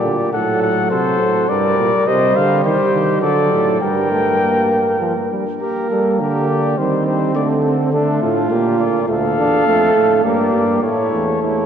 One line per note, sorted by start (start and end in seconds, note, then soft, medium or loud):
0.00 0.32 A#2 medium
0.00 0.17 D3 medium
0.00 0.33 G4 medium
0.00 0.32 D5 medium
0.32 0.93 A2 medium
0.32 1.47 F#3 medium
0.32 0.90 A4 medium
0.32 0.61 F#5 medium
0.61 0.90 F#5 medium
0.91 1.22 C3 medium
0.91 1.48 A4 medium
0.91 1.50 C5 medium
1.20 1.49 A2 medium
1.49 1.78 G2 medium
1.49 2.06 G3 medium
1.49 2.06 A#4 medium
1.49 2.09 D5 medium
1.79 1.92 A#2 medium
2.07 2.35 C3 medium
2.07 3.24 G3 medium
2.07 2.63 C5 medium
2.07 2.37 D#5 medium
2.36 2.64 D3 medium
2.36 2.64 F5 medium
2.64 2.78 D#3 medium
2.64 3.24 G4 medium
2.64 3.21 C5 medium
2.93 3.22 D#3 medium
3.21 3.51 D3 medium
3.21 3.81 F#3 medium
3.21 3.81 A4 medium
3.21 3.80 D5 medium
3.52 3.81 A2 medium
3.81 5.28 G2 medium
3.81 4.11 G3 medium
3.81 5.28 A#4 medium
3.81 5.28 G5 medium
4.11 4.40 A3 medium
4.41 5.00 A#3 medium
5.01 5.14 F3 medium
5.31 5.44 G3 medium
5.61 6.79 A#3 medium
5.61 5.88 G4 medium
5.61 6.16 A#4 medium
5.90 6.21 G3 medium
5.90 6.21 A4 medium
6.20 6.78 D3 medium
6.20 6.77 G4 medium
6.20 6.48 A#4 medium
6.49 6.79 D5 medium
6.77 7.37 D#3 medium
6.77 7.35 G3 medium
6.77 7.91 C4 medium
6.77 7.06 C5 medium
7.06 7.34 C5 medium
7.35 8.22 D3 medium
7.35 7.92 A3 medium
7.35 7.48 D5 medium
7.64 7.91 A4 medium
7.92 8.53 A3 medium
7.92 8.21 D4 medium
7.92 8.49 A4 medium
8.22 8.50 A2 medium
8.22 9.07 F4 medium
8.50 9.07 A#2 medium
8.50 9.08 A#3 medium
8.50 8.79 G4 medium
8.79 9.08 D5 medium
9.08 9.38 D2 medium
9.08 9.22 A3 medium
9.08 10.22 A4 medium
9.08 10.22 F5 medium
9.37 9.65 E2 medium
9.37 9.66 D4 medium
9.66 9.95 F2 medium
9.66 10.25 A3 medium
9.95 10.23 A2 medium
10.24 10.52 G2 medium
10.24 10.82 A#3 medium
10.24 10.85 G4 medium
10.24 10.81 D5 medium
10.53 10.81 G2 medium
10.82 11.11 A2 medium
10.82 11.66 A3 medium
10.82 11.25 E4 medium
10.82 11.41 C#5 medium
11.12 11.41 E2 medium
11.41 11.66 E2 medium
11.41 11.66 E4 medium
11.41 11.66 C#5 medium